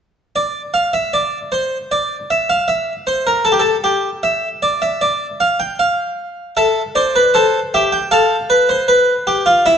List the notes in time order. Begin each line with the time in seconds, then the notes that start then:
0.36 D5
0.74 F5
0.93 E5
1.13 D5
1.52 C5
1.91 D5
2.30 E5
2.50 F5
2.68 E5
3.07 C5
3.27 A#4
3.45 A4
3.52 G4
3.59 A4
3.84 G4
4.23 E5
4.62 D5
4.82 E5
5.01 D5
5.40 F5
5.60 G5
5.79 F5
6.57 A4 E5
6.95 C5 D5
7.16 B4
7.34 A4 C5
7.74 G4 E5
7.92 G5
8.11 A4 F5
8.50 B4
8.69 C5
8.88 B4
9.27 G4
9.46 F4
9.66 E4 E5